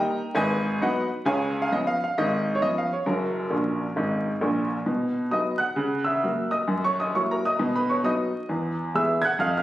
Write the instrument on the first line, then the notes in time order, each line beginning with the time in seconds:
upright piano
Already playing: G3 A#3 D#4 D#5 G5 A#5
0.35 G#1 G#2 B4 D#5 G#5
0.81 F#3 B3 D#4 B4 D#5 F#5
1.25 C#2 C#3 C#5 F5 G#5
1.62 F5
1.72 F3 B3 C#4 D#5
1.87 F5
2.04 F5
2.18 G#1 G#2 D#5
2.55 C#5
2.62 F3 B3 C#4 D#5
2.78 F5
2.93 C#5
3.06 F#1 F#2 C#4 F#4 A#4
3.50 A#1 A#2
3.96 G#1 G#2
4.41 A#1 A#2
4.86 B2
5.31 F#3 B3 D#4 D#5 D#6
5.58 F#5 F#6
5.76 C#3
6.05 E5 E6
6.23 F#3 A#3 F#4
6.51 D#5 D#6
6.68 F#2
6.84 C#5 C#6
7.00 D#5 D#6
7.14 F#3 A#3 E4 C#5 C#6
7.31 A#4 A#5
7.45 D#5 D#6
7.59 B2
7.76 B4 B5
7.90 C#5 C#6
8.04 F#3 B3 D#4 D#5 D#6
8.49 E2
8.94 E3 B3 G#4 E5 E6
9.22 F#6 G#6
9.26 F#5
9.39 F2 F5 F6
9.57 F5 F6